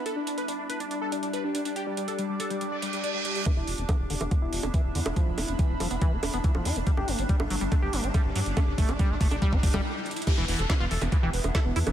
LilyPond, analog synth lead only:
\new Staff \with { instrumentName = "Analog synth lead" } { \time 4/4 \key e \minor \tempo 4 = 141 a'16 d'16 d'16 b'16 d'16 d'16 b'16 d'16 d'16 a'16 d'16 d'16 b'16 d'16 d'16 d'16 | g'16 g16 g16 a'16 g16 g16 a'16 g16 g16 d''16 g16 g16 d''16 g16 g16 g16 | r1 | r1 |
r1 | r1 | g'16 b16 b16 a'16 b16 b16 a'16 b16 b16 g'16 b16 b16 a'16 b16 b16 b16 | }